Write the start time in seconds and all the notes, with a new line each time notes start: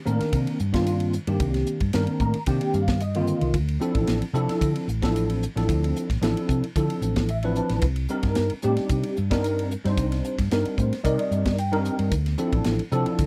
0.05 A2 D#3 A#3 C4 D4 A#4, hi-hat pedal
0.20 muted fingered electric bass stroke, snare, ride
0.33 C3, kick, hi-hat pedal, ride
0.47 ride
0.59 G2, hi-hat pedal
0.73 D#3 A#3 C4 D4 F4, kick, snare, ride
0.86 hi-hat pedal, ride
1.00 ride
1.13 hi-hat pedal
1.27 G2 D#3 A#3 C4 D4 G4, ride
1.40 C2, kick, hi-hat pedal, ride
1.54 snare, ride
1.66 hi-hat pedal
1.80 G2, kick, ride
1.93 G2 D#3 A#3 C4 D4 A#4, snare, hi-hat pedal, ride
2.07 muted fingered electric bass stroke, ride
2.20 A2 A#5, kick, hi-hat pedal
2.34 muted fingered electric bass stroke, ride
2.46 C3 D#3 A#3 C4 D4 G4 G5, kick, hi-hat pedal, ride
2.61 ride
2.74 G2 F5, hi-hat pedal
2.88 kick, snare, ride
3.00 D#5, hi-hat pedal, ride
3.15 D3 D#3 A#3 C4 F4, ride
3.27 hi-hat pedal
3.41 C2, ride
3.54 D2, kick, hi-hat pedal, ride
3.68 ride
3.80 F3 C4 D4 E4 A4, hi-hat pedal
3.95 A1, kick, ride
4.07 A1, snare, hi-hat pedal, ride
4.22 muted fingered electric bass stroke, ride
4.33 C3 F3 C4 D4 E4 A4, hi-hat pedal
4.48 muted fingered electric bass stroke, snare, ride
4.61 D3, kick, hi-hat pedal, ride
4.76 ride
4.88 A1, hi-hat pedal
5.02 F3 C4 D4 E4 A4, kick, snare, ride
5.16 hi-hat pedal, ride
5.30 ride
5.43 hi-hat pedal
5.56 A1 F3 C4 D4 E4 A4, snare, ride
5.69 D2, kick, hi-hat pedal, ride
5.84 ride
5.96 hi-hat pedal
6.10 A1, kick, snare, ride
6.21 A1 F3 C4 D4 E4 A4, snare, hi-hat pedal, ride
6.36 muted fingered electric bass stroke, ride
6.49 C3, kick, hi-hat pedal
6.62 muted fingered electric bass stroke, ride
6.76 D3 F3 C4 D4 E4 A4, kick, hi-hat pedal, ride
6.90 ride
7.01 A1, hi-hat pedal
7.16 kick, snare, ride
7.29 E5, hi-hat pedal, ride
7.43 F3 C4 D4 E4 B4, ride
7.55 A5, hi-hat pedal
7.69 A1, snare, ride
7.81 C2, kick, hi-hat pedal, ride
7.96 ride
8.08 G3 C4 D4 D#4 A#4, hi-hat pedal
8.23 G2, kick, snare, ride
8.35 G2, snare, hi-hat pedal, ride
8.50 muted fingered electric bass stroke, ride
8.62 A2 G3 C4 D4 D#4 G4, hi-hat pedal
8.77 muted fingered electric bass stroke, snare, ride
8.89 C3, kick, hi-hat pedal, ride
9.03 ride
9.16 G2, hi-hat pedal
9.30 G3 C4 D4 D#4 A#4, kick, snare, ride
9.44 hi-hat pedal, ride
9.59 ride
9.71 hi-hat pedal
9.84 G2 G3 C4 D4 D#4 C5, snare, ride
9.97 C2, kick, hi-hat pedal, ride
10.12 snare, ride
10.24 hi-hat pedal
10.38 G2, kick, snare, ride
10.51 G2 G3 C4 D4 D#4 A#4, snare, hi-hat pedal, ride
10.65 muted fingered electric bass stroke, ride
10.78 A2 C5, kick, hi-hat pedal
10.92 muted fingered electric bass stroke, snare, ride
11.04 C3 G3 C4 D#4 A#4 D5 D#5, kick, hi-hat pedal, ride
11.19 ride
11.31 G2, hi-hat pedal
11.45 kick, snare, ride
11.58 G5, hi-hat pedal, ride
11.72 G3 C4 D4 D#4 A#4, ride
11.85 hi-hat pedal
11.99 G2, ride
12.11 D2, kick, hi-hat pedal, ride
12.26 snare, ride
12.38 F3 C4 D4 E4 A4, hi-hat pedal
12.53 A1, kick, ride
12.64 A1, snare, hi-hat pedal, ride
12.79 muted fingered electric bass stroke, ride
12.92 C3 F3 C4 D4 E4 A4, hi-hat pedal
13.06 muted fingered electric bass stroke, ride
13.19 D3, kick, hi-hat pedal, ride